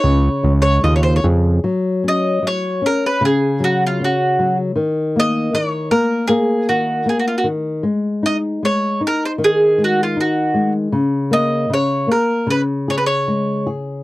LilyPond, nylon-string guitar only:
\new Staff \with { instrumentName = "Nylon-string guitar" } { \clef bass \time 2/4 \key des \major \tempo 4 = 77 des8 aes8 f'8 aes'8 | \key fis \major fis8 cis'8 fis8 cis'8 | cis8 fis8 cis'8 fis8 | dis8 ais8 dis8 ais8 |
ais8 dis8 ais8 dis8 | gis8 dis'8 gis8 dis'8 | dis8 gis8 dis'8 gis8 | cis8 ais8 cis8 ais8 |
cis8 gis'8 gis8 gis'8 | }